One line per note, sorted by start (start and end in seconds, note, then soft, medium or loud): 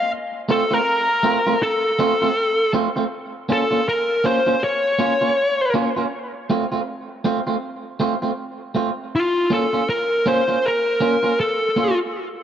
0.49 0.62 A3 medium
0.49 0.63 C4 loud
0.49 0.63 F4 loud
0.49 0.74 A4 loud
0.71 0.79 A3 medium
0.71 0.78 C4 medium
0.71 0.78 F4 medium
0.71 1.62 A#4 loud
1.23 1.37 A3 medium
1.23 1.38 C4 medium
1.23 1.38 F4 medium
1.47 1.54 A3 medium
1.47 1.54 C4 medium
1.47 1.54 F4 medium
1.63 2.71 A4 medium
1.99 2.12 A3 medium
1.99 2.13 C4 medium
1.99 2.13 F4 medium
2.22 2.29 A3 soft
2.22 2.29 C4 soft
2.22 2.29 F4 medium
2.73 2.87 A3 medium
2.73 2.88 C4 medium
2.73 2.88 F4 medium
2.96 3.04 A3 medium
2.96 3.04 C4 medium
2.96 3.04 F4 medium
3.49 3.63 A#3 medium
3.49 3.63 C#4 medium
3.49 3.63 F4 medium
3.49 3.86 A4 medium
3.71 3.79 A#3 medium
3.71 3.79 C#4 medium
3.71 3.79 F4 medium
3.89 4.27 A#4 medium
4.24 4.38 A#3 medium
4.24 4.38 C#4 medium
4.24 4.39 F4 medium
4.24 4.63 C5 medium
4.47 4.55 A#3 soft
4.47 4.54 C#4 medium
4.47 4.54 F4 medium
4.64 5.72 C#5 loud
4.99 5.13 A#3 medium
4.99 5.13 C#4 medium
4.99 5.14 F4 medium
5.21 5.30 A#3 soft
5.21 5.29 C#4 soft
5.21 5.29 F4 medium
5.74 5.88 A#3 medium
5.74 5.89 C#4 medium
5.74 5.89 F4 medium
5.96 6.05 A#3 soft
5.96 6.05 C#4 medium
5.96 6.04 F4 medium
6.50 6.64 A3 medium
6.50 6.64 C4 medium
6.50 6.64 F4 medium
6.72 6.80 A3 medium
6.72 6.80 C4 medium
6.72 6.80 F4 medium
7.24 7.39 A3 medium
7.24 7.39 C4 medium
7.24 7.39 F4 medium
7.47 7.55 A3 medium
7.47 7.55 C4 medium
7.47 7.55 F4 medium
8.00 8.14 A3 medium
8.00 8.14 C4 medium
8.00 8.15 F4 medium
8.22 8.31 A3 soft
8.22 8.30 C4 soft
8.22 8.30 F4 medium
8.75 8.89 A3 medium
8.75 8.90 C4 medium
8.75 8.90 F4 medium
9.15 9.50 F4 medium
9.50 9.65 A#3 medium
9.50 9.65 C#4 loud
9.50 9.65 F4 loud
9.50 9.89 A4 medium
9.73 9.81 A#3 soft
9.73 9.81 C#4 medium
9.73 9.81 F4 medium
9.89 10.28 A#4 medium
10.26 10.40 A#3 medium
10.26 10.40 C#4 medium
10.26 10.40 F4 medium
10.26 10.66 C5 medium
10.48 10.56 A#3 soft
10.48 10.56 C#4 medium
10.48 10.56 F4 medium
10.66 11.40 A#4 loud
11.01 11.15 A#3 medium
11.01 11.15 C#4 medium
11.01 11.16 F4 medium
11.23 11.32 A#3 soft
11.23 11.31 C#4 medium
11.23 11.31 F4 medium
11.40 11.96 A4 medium
11.76 11.90 A#3 medium
11.76 11.91 C#4 medium
11.76 11.91 F4 medium